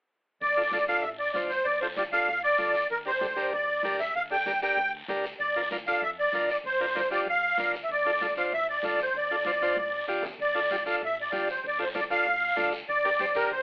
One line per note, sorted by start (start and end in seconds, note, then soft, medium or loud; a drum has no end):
0.41 0.91 D2 medium
0.41 0.85 D5 medium
0.41 high conga soft
0.41 long guiro medium
0.57 0.62 D4 medium
0.57 0.63 F4 medium
0.57 0.63 A4 medium
0.71 0.78 D4 medium
0.71 0.78 F4 medium
0.71 0.78 A4 medium
0.71 high conga medium
0.71 short guiro medium
0.88 1.05 D4 medium
0.88 1.05 F4 medium
0.88 1.05 A4 medium
0.88 1.03 F5 medium
0.88 short guiro medium
1.02 1.29 A1 medium
1.02 1.09 E5 medium
1.02 high conga soft
1.02 long guiro medium
1.19 1.31 D5 medium
1.33 1.60 D2 medium
1.33 1.51 D4 medium
1.33 1.51 F4 medium
1.33 1.52 C5 medium
1.33 1.40 D5 medium
1.33 high conga medium
1.33 short guiro medium
1.50 1.66 C5 medium
1.50 short guiro medium
1.65 2.16 D2 medium
1.65 1.80 D5 medium
1.65 high conga soft
1.65 long guiro medium
1.81 1.87 D4 medium
1.81 1.87 F4 soft
1.81 1.88 A4 medium
1.81 1.88 C5 medium
1.97 2.03 D4 medium
1.97 2.03 F4 medium
1.97 2.03 G4 medium
1.97 2.04 D5 medium
1.97 high conga medium
1.97 short guiro medium
2.12 2.29 D4 medium
2.12 2.29 F4 medium
2.12 2.29 A4 medium
2.12 2.41 F5 medium
2.12 short guiro medium
2.28 2.53 A1 loud
2.28 high conga soft
2.28 long guiro medium
2.44 2.87 D5 medium
2.58 2.84 D2 medium
2.58 2.75 D4 medium
2.58 2.75 F4 medium
2.58 2.76 A4 medium
2.58 high conga medium
2.58 short guiro medium
2.75 short guiro medium
2.90 3.40 D2 medium
2.90 2.98 A#4 medium
2.90 high conga soft
2.90 long guiro medium
3.06 3.11 D4 medium
3.06 3.11 G4 medium
3.06 3.12 A#4 medium
3.06 3.50 C5 medium
3.21 3.27 D4 medium
3.21 3.27 G4 medium
3.21 3.27 A4 medium
3.21 high conga medium
3.21 short guiro medium
3.36 3.53 D4 medium
3.36 3.53 G4 medium
3.36 3.54 A#4 medium
3.36 short guiro medium
3.52 3.78 D2 loud
3.52 3.97 D5 medium
3.52 high conga soft
3.52 long guiro medium
3.83 4.09 D2 medium
3.83 4.00 D4 medium
3.83 4.01 G4 medium
3.83 4.01 A#4 medium
3.83 high conga medium
3.83 short guiro medium
3.99 4.14 E5 medium
3.99 short guiro medium
4.14 4.65 D2 medium
4.14 4.23 F5 loud
4.14 high conga soft
4.14 long guiro medium
4.31 4.36 D4 medium
4.31 4.36 G4 soft
4.31 4.36 A4 medium
4.31 4.60 G5 medium
4.46 4.52 D4 medium
4.46 4.52 G4 medium
4.46 4.52 A#4 medium
4.46 high conga medium
4.46 short guiro medium
4.62 4.78 D4 medium
4.62 4.78 G4 medium
4.62 4.79 A#4 medium
4.62 4.92 G5 medium
4.62 short guiro medium
4.77 5.02 D2 loud
4.77 high conga soft
4.77 long guiro medium
5.08 5.33 D2 medium
5.08 5.25 D4 medium
5.08 5.25 G4 medium
5.08 5.25 A#4 medium
5.08 high conga medium
5.08 short guiro medium
5.24 short guiro medium
5.39 5.89 D2 medium
5.39 5.69 D5 medium
5.39 high conga soft
5.39 long guiro medium
5.56 5.61 D4 medium
5.56 5.61 F4 medium
5.56 5.62 A#4 medium
5.71 5.77 D4 medium
5.71 5.77 F4 medium
5.71 5.77 A#4 medium
5.71 high conga medium
5.71 short guiro medium
5.87 6.04 D4 medium
5.87 6.04 F4 medium
5.87 6.04 A4 medium
5.87 6.01 F5 medium
5.87 short guiro medium
6.02 6.27 F2 medium
6.02 6.10 E5 medium
6.02 high conga soft
6.02 long guiro medium
6.19 6.49 D5 medium
6.32 6.58 D2 medium
6.32 6.50 D4 medium
6.32 6.50 F4 medium
6.32 6.50 A#4 medium
6.32 high conga medium
6.32 short guiro medium
6.49 6.57 D5 medium
6.49 short guiro medium
6.64 7.14 D2 medium
6.64 7.09 C5 medium
6.64 high conga soft
6.64 long guiro medium
6.81 6.86 D4 medium
6.81 6.86 F4 medium
6.81 6.86 A#4 medium
6.95 7.01 D4 medium
6.95 7.01 F4 medium
6.95 7.01 A#4 medium
6.95 high conga medium
6.95 short guiro medium
7.11 7.27 D4 medium
7.11 7.28 F4 medium
7.11 7.28 G4 medium
7.11 7.21 D5 medium
7.11 short guiro medium
7.26 7.52 F2 loud
7.26 7.72 F5 medium
7.26 high conga soft
7.26 long guiro medium
7.58 7.83 D2 medium
7.58 7.75 D4 medium
7.58 7.75 F4 medium
7.58 7.75 A#4 medium
7.58 high conga medium
7.58 short guiro medium
7.74 short guiro medium
7.84 7.90 E5 medium
7.89 8.39 D2 medium
7.89 8.34 D5 medium
7.89 high conga soft
7.89 long guiro medium
8.06 8.11 D4 medium
8.06 8.11 F4 medium
8.06 8.11 A4 medium
8.20 8.26 D4 medium
8.20 8.27 F4 medium
8.20 8.27 A4 medium
8.20 high conga medium
8.20 short guiro medium
8.36 8.53 D4 medium
8.36 8.53 F4 medium
8.36 8.53 C5 medium
8.36 8.45 F5 medium
8.36 short guiro medium
8.52 8.77 A1 loud
8.52 8.67 E5 medium
8.52 high conga soft
8.52 long guiro medium
8.70 8.84 D5 medium
8.83 9.08 D2 medium
8.83 9.00 D4 medium
8.83 9.00 F4 medium
8.83 9.00 A4 medium
8.83 9.00 D5 medium
8.83 high conga medium
8.83 short guiro medium
8.99 9.17 C5 medium
8.99 short guiro medium
9.14 9.64 D2 medium
9.14 10.05 D5 medium
9.14 high conga soft
9.14 long guiro medium
9.31 9.36 D4 medium
9.31 9.36 F4 soft
9.31 9.36 A4 medium
9.45 9.51 D4 medium
9.45 9.51 F4 medium
9.45 9.52 C5 medium
9.45 high conga medium
9.45 short guiro medium
9.62 9.78 D4 medium
9.62 9.78 F4 medium
9.62 9.78 C5 medium
9.62 short guiro medium
9.76 10.01 A1 medium
9.76 high conga medium
9.76 long guiro medium
10.08 10.33 D2 medium
10.08 10.24 D4 medium
10.08 10.24 F4 medium
10.08 10.24 G4 medium
10.08 short guiro medium
10.23 low conga medium
10.23 short guiro medium
10.38 10.88 D2 medium
10.38 10.83 D5 medium
10.38 high conga soft
10.38 long guiro medium
10.54 10.60 D4 medium
10.54 10.60 F4 medium
10.54 10.60 A4 medium
10.71 10.76 D4 medium
10.71 10.76 F4 medium
10.71 10.76 G4 medium
10.71 high conga medium
10.71 short guiro medium
10.86 11.02 D4 medium
10.86 11.02 F4 medium
10.86 11.02 A4 medium
10.86 short guiro medium
10.90 10.96 F5 medium
11.01 11.26 A1 medium
11.01 11.18 E5 medium
11.01 high conga soft
11.01 long guiro medium
11.21 11.33 D5 medium
11.32 11.57 D2 medium
11.32 11.49 D4 medium
11.32 11.49 F4 medium
11.32 11.49 G4 medium
11.32 11.48 D5 medium
11.32 high conga medium
11.32 short guiro medium
11.48 11.65 C5 medium
11.48 short guiro medium
11.64 12.14 D2 loud
11.64 11.80 D5 medium
11.64 high conga soft
11.64 long guiro medium
11.79 11.84 D4 medium
11.79 11.85 F4 medium
11.79 11.85 A4 medium
11.79 11.88 C5 medium
11.95 12.00 D4 medium
11.95 12.00 F4 medium
11.95 12.00 A4 medium
11.95 12.04 D5 medium
11.95 high conga medium
11.95 short guiro medium
12.11 12.27 D4 medium
12.11 12.27 F4 medium
12.11 12.27 A4 medium
12.11 12.69 F5 medium
12.11 short guiro medium
12.26 12.51 A1 loud
12.26 high conga soft
12.26 long guiro medium
12.56 12.82 D2 medium
12.56 12.73 D4 medium
12.56 12.73 F4 medium
12.56 12.73 A4 medium
12.56 high conga medium
12.56 short guiro medium
12.72 short guiro medium
12.87 13.38 D2 loud
12.87 13.37 D5 medium
12.87 high conga soft
12.87 long guiro medium
13.05 13.10 D4 medium
13.05 13.10 G4 soft
13.05 13.10 A#4 medium
13.19 13.25 D4 medium
13.19 13.25 G4 medium
13.19 13.26 C5 medium
13.19 high conga medium
13.19 short guiro medium
13.35 13.52 D4 medium
13.35 13.52 G4 medium
13.35 13.50 A#4 medium
13.35 13.52 A#4 medium
13.35 short guiro medium
13.50 13.62 D2 loud
13.50 13.62 C5 medium
13.50 high conga soft
13.50 long guiro medium